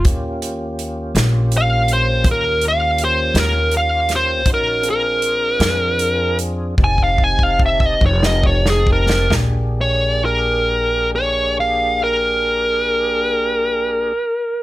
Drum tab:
HH |x-x-x-x-x-x-x-x-x-x-x-x-|x-x-x-x-x-x-------------|------------------------|
SD |------o-----------o---o-|------o------------o-o-o|o-----------------------|
FT |------------------------|------------------------|o-----------------------|
BD |o-----------o-----------|o-----------ooooooo-o-o-|------------------------|